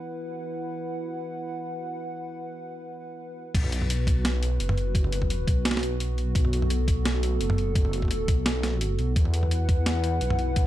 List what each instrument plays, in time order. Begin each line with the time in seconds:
Already playing: analog synth pad E4 B4 F#5
3.55 detuned saw bass B1, analog synth pad B3 F#4 B4, kick, closed hi-hat, crash
3.64 mid tom
3.72 closed hi-hat
3.82 mid tom
3.90 closed hi-hat
4.07 kick, closed hi-hat
4.25 snare, closed hi-hat
4.43 closed hi-hat
4.60 detuned saw bass F#1, closed hi-hat
4.69 mid tom
4.78 closed hi-hat
4.95 kick, closed hi-hat
5.04 mid tom
5.12 detuned saw bass F#1, closed hi-hat
5.22 kick, mid tom
5.30 closed hi-hat
5.47 detuned saw bass B1, kick, closed hi-hat
5.65 snare, closed hi-hat
5.71 snare
5.77 snare
5.83 closed hi-hat
6.00 closed hi-hat
6.18 closed hi-hat
6.35 detuned saw bass B1, analog synth pad A4, kick, closed hi-hat
6.45 mid tom
6.53 closed hi-hat
6.62 mid tom
6.70 closed hi-hat
6.88 kick, closed hi-hat
7.06 snare, closed hi-hat
7.23 closed hi-hat
7.41 detuned saw bass F#1, closed hi-hat
7.50 mid tom
7.58 closed hi-hat
7.75 kick, closed hi-hat
7.85 mid tom
7.93 detuned saw bass F#1, closed hi-hat
8.02 kick, mid tom
8.05 mid tom
8.08 closed hi-hat, mid tom
8.28 detuned saw bass B1, kick, closed hi-hat
8.46 snare, closed hi-hat
8.63 snare, closed hi-hat
8.81 closed hi-hat
8.99 detuned saw bass B1, closed hi-hat
9.16 detuned saw bass E2, analog synth pad E4 B4 F#5, kick, closed hi-hat
9.25 mid tom
9.34 closed hi-hat
9.43 mid tom
9.51 closed hi-hat
9.69 kick, closed hi-hat
9.86 snare, closed hi-hat
10.04 closed hi-hat
10.21 detuned saw bass B1, closed hi-hat
10.30 mid tom
10.39 closed hi-hat
10.56 kick, closed hi-hat